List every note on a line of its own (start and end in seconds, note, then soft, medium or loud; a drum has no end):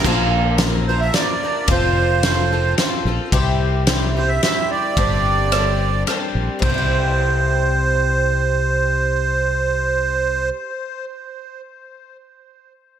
0.04 1.09 A#1 medium
0.04 0.59 A#2 medium
0.04 0.59 D3 medium
0.04 0.60 F3 medium
0.04 0.59 A#3 medium
0.04 0.60 D4 medium
0.04 0.60 A#4 medium
0.04 kick loud
0.04 crash medium
0.58 0.87 F3 medium
0.58 0.87 A#3 medium
0.58 snare medium
0.58 ride medium
0.63 0.88 D4 medium
0.63 0.88 A#4 medium
0.87 1.14 F3 soft
0.87 1.15 A#3 soft
0.87 1.15 D4 soft
0.87 1.15 A#4 soft
0.87 1.01 C5 medium
1.00 1.14 E5 medium
1.14 1.42 F3 medium
1.14 1.42 A#3 medium
1.14 1.42 D4 medium
1.14 1.42 A#4 medium
1.14 1.70 D5 medium
1.14 snare medium
1.14 ride medium
1.43 1.68 F3 soft
1.43 1.70 A#3 soft
1.43 1.70 D4 soft
1.43 1.69 A#4 soft
1.68 2.74 F1 medium
1.68 2.23 F3 medium
1.68 2.25 C4 medium
1.68 2.24 F4 medium
1.68 2.24 A4 medium
1.68 2.75 C5 medium
1.68 kick medium
1.68 ride medium
2.23 2.51 F3 medium
2.23 2.51 C4 medium
2.23 2.52 F4 medium
2.23 2.51 A4 medium
2.23 snare medium
2.23 ride medium
2.52 2.78 C4 soft
2.52 2.79 F4 soft
2.52 2.79 A4 soft
2.78 3.05 F3 medium
2.78 3.06 C4 medium
2.78 3.06 F4 medium
2.78 3.05 A4 medium
2.78 snare medium
2.78 ride medium
3.05 3.18 A#1 medium
3.05 3.33 C4 soft
3.05 3.34 F4 soft
3.05 3.33 A4 soft
3.32 4.38 C2 medium
3.32 3.87 C3 medium
3.32 3.87 G3 medium
3.32 3.88 C4 medium
3.32 3.88 E4 medium
3.32 3.89 G4 medium
3.32 kick loud
3.32 ride medium
3.87 4.15 G3 medium
3.87 4.15 C4 medium
3.87 4.16 E4 medium
3.87 4.16 G4 medium
3.87 snare medium
3.87 ride medium
4.17 4.42 C4 soft
4.17 4.43 E4 soft
4.17 4.43 G4 soft
4.17 4.30 C5 medium
4.28 4.41 E5 medium
4.43 4.97 G3 medium
4.43 4.97 C4 medium
4.43 4.97 E4 medium
4.43 4.98 G4 medium
4.43 4.71 E5 medium
4.43 snare medium
4.43 ride soft
4.71 6.03 D5 medium
4.97 6.03 G1 medium
4.97 5.52 G2 medium
4.97 5.52 D3 medium
4.97 5.52 G3 medium
4.97 5.52 C4 medium
4.97 5.52 D4 medium
4.97 5.53 G4 medium
4.97 kick loud
4.97 ride medium
5.52 6.07 G3 medium
5.52 6.08 C4 medium
5.52 6.08 D4 medium
5.52 6.08 G4 medium
5.52 cross-stick medium
5.52 ride medium
6.07 6.63 G3 medium
6.07 6.63 C4 medium
6.07 6.63 D4 medium
6.07 6.64 G4 medium
6.07 cross-stick medium
6.07 ride soft
6.35 6.48 A#1 medium
6.59 10.50 C2 medium
6.59 10.51 C3 medium
6.59 10.50 C5 medium
6.59 kick medium
6.59 floor tom medium
6.59 crash medium
6.65 10.57 G3 medium
6.70 10.61 C4 medium
6.74 10.66 E4 medium
6.74 10.70 G4 medium